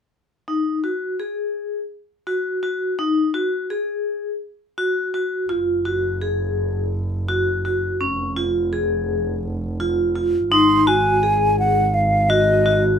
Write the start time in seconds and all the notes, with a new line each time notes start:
0.48 D#4
0.84 F#4
1.20 G#4
2.27 F#4
2.63 F#4
2.99 D#4
3.34 F#4
3.70 G#4
4.78 F#4
5.14 F#4
5.49 F#1 F4
5.85 F#4
6.21 G#4
7.29 F#4
7.65 F#4
8.00 F1 C#4
8.37 F4
8.73 G#4
9.80 F4
10.15 F4
10.51 G#1 D#4 C6
10.87 F#4 G#5
11.23 G#4
11.59 F#5
11.94 F5
12.30 F#4 D#5
12.66 F#4